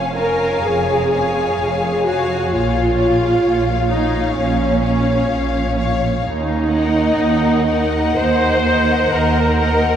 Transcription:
0.00 0.53 F1 soft
0.00 0.53 F2 soft
0.00 0.13 C#4 soft
0.00 0.15 C#5 soft
0.00 0.15 F5 soft
0.00 0.15 G#5 soft
0.17 0.65 A#4 medium
0.17 1.11 C#5 soft
0.17 1.11 F5 soft
0.17 1.10 G#5 soft
0.65 1.48 F1 soft
0.65 1.48 F2 soft
0.65 2.07 G#4 soft
1.12 2.05 C#5 soft
1.12 2.05 F5 soft
1.12 2.04 G#5 soft
1.59 2.42 F1 soft
1.59 2.42 F2 soft
2.06 2.53 F#4 soft
2.06 2.52 C#5 soft
2.06 2.52 F5 soft
2.06 2.52 G#5 soft
2.53 3.34 A#1 soft
2.53 3.34 A#2 soft
2.53 3.91 F4 medium
2.53 2.98 C#5 soft
2.53 2.98 F5 soft
2.99 3.89 C#5 soft
2.99 3.89 F5 soft
3.45 4.26 A#1 soft
3.45 4.26 A#2 soft
3.90 4.36 D#4 medium
3.90 4.81 C#5 soft
3.90 4.81 F5 soft
4.36 5.19 A#1 soft
4.36 5.18 A#2 soft
4.36 5.74 C#4 soft
4.83 5.75 C#5 soft
4.83 5.75 F5 soft
5.29 6.12 A#1 soft
5.29 6.13 A#2 soft
5.77 6.23 C#5 soft
5.77 6.23 F5 soft
6.23 7.06 D#2 soft
6.23 8.13 D#4 medium
6.70 7.65 A#4 soft
6.70 7.65 D#5 soft
6.70 7.64 F#5 soft
7.17 8.05 D#2 medium
7.67 8.64 A#4 soft
7.67 8.64 D#5 soft
7.67 8.64 F#5 soft
8.17 9.02 D#2 medium
8.17 9.12 C5 medium
8.66 9.59 A#4 soft
8.66 9.59 D#5 soft
8.66 9.59 F#5 soft
9.13 9.96 D#2 medium
9.13 9.96 D#2 soft
9.13 9.96 A#4 medium
9.60 9.96 A#4 soft
9.60 9.96 D#5 soft
9.60 9.96 F#5 soft

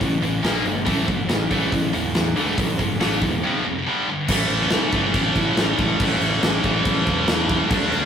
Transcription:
0.00 0.20 A1 medium
0.00 0.20 A2 medium
0.00 0.20 E3 medium
0.00 kick medium
0.00 open hi-hat medium
0.22 0.41 A1 medium
0.22 0.42 A2 medium
0.22 0.42 E3 medium
0.22 open hi-hat medium
0.43 0.63 A#1 medium
0.43 0.64 A#2 medium
0.43 0.64 F3 medium
0.43 0.64 A#3 loud
0.43 snare loud
0.43 open hi-hat medium
0.65 0.84 G1 medium
0.65 0.84 A#2 medium
0.65 0.85 F3 medium
0.65 open hi-hat medium
0.85 1.05 A1 loud
0.85 1.06 A2 loud
0.85 1.07 E3 loud
0.85 1.07 A3 loud
0.85 kick loud
0.85 open hi-hat medium
1.07 1.27 G1 medium
1.07 1.27 A2 medium
1.07 1.27 E3 medium
1.07 kick medium
1.07 open hi-hat soft
1.29 1.48 A1 medium
1.29 1.48 A2 medium
1.29 1.49 E3 medium
1.29 snare loud
1.29 open hi-hat medium
1.51 1.69 A1 medium
1.51 1.71 A2 medium
1.51 1.71 E3 loud
1.51 1.72 A3 loud
1.51 kick medium
1.51 open hi-hat medium
1.72 1.91 A1 medium
1.72 1.92 A2 medium
1.72 1.92 E3 medium
1.72 kick medium
1.72 open hi-hat medium
1.93 2.12 E1 medium
1.93 2.13 A2 medium
1.93 2.13 E3 medium
1.93 open hi-hat medium
2.15 2.34 E2 medium
2.15 2.34 A2 medium
2.15 2.34 E3 medium
2.15 snare loud
2.15 open hi-hat medium
2.36 2.55 D2 medium
2.36 2.57 A2 medium
2.36 2.57 E3 medium
2.36 2.57 A3 loud
2.36 open hi-hat medium
2.58 2.76 A1 medium
2.58 2.78 A2 medium
2.58 2.78 E3 medium
2.58 kick loud
2.58 open hi-hat medium
2.79 2.98 G1 medium
2.79 2.98 A2 medium
2.79 2.99 E3 medium
2.79 kick medium
2.79 open hi-hat medium
3.00 3.20 A1 medium
3.00 3.20 A2 medium
3.00 3.20 E3 medium
3.00 3.21 A3 loud
3.00 snare loud
3.00 open hi-hat medium
3.21 3.40 E1 medium
3.21 3.41 A2 medium
3.21 3.41 E3 medium
3.21 kick medium
3.21 open hi-hat medium
3.44 3.64 F2 loud
3.44 3.64 C3 medium
3.44 3.64 F3 loud
3.65 3.84 F2 medium
3.65 3.84 C3 medium
3.86 4.06 G2 medium
3.86 4.07 D3 medium
3.86 4.07 G3 loud
4.08 4.27 G2 medium
4.08 4.27 D3 medium
4.28 4.45 A1 loud
4.28 4.95 A2 medium
4.28 4.94 E3 loud
4.28 4.92 A3 loud
4.28 kick loud
4.28 crash loud
4.28 crash medium
4.50 4.66 A1 loud
4.50 crash medium
4.61 snare soft
4.70 4.88 C2 medium
4.70 snare loud
4.70 crash medium
4.92 5.09 G1 medium
4.92 5.99 A2 medium
4.92 5.99 E3 medium
4.92 6.02 A3 medium
4.92 kick medium
4.92 crash medium
5.14 5.30 A1 medium
5.14 kick loud
5.14 crash medium
5.35 5.52 A1 medium
5.35 kick medium
5.35 crash medium
5.57 5.73 A1 medium
5.57 snare loud
5.57 crash medium
5.79 5.95 A1 medium
5.79 kick loud
5.79 crash medium
6.00 6.16 A1 loud
6.00 6.63 A2 loud
6.00 6.63 E3 loud
6.00 6.64 A3 loud
6.00 kick loud
6.00 crash loud
6.21 6.37 A1 medium
6.21 crash medium
6.43 6.59 A1 medium
6.43 snare loud
6.43 crash medium
6.64 6.80 A1 medium
6.64 7.69 A2 medium
6.64 7.70 E3 medium
6.64 7.72 A3 medium
6.64 kick medium
6.64 crash medium
6.85 7.02 A1 loud
6.85 kick loud
6.85 crash medium
7.07 7.23 E1 loud
7.07 kick medium
7.07 crash medium
7.28 7.60 E2 loud
7.28 snare loud
7.28 crash medium
7.49 kick medium
7.49 snare soft
7.49 crash medium
7.70 7.87 D2 loud
7.70 8.05 D3 loud
7.70 8.05 A3 loud
7.70 8.05 D4 loud
7.70 kick loud
7.70 crash medium
7.92 8.05 D2 medium
7.92 crash medium

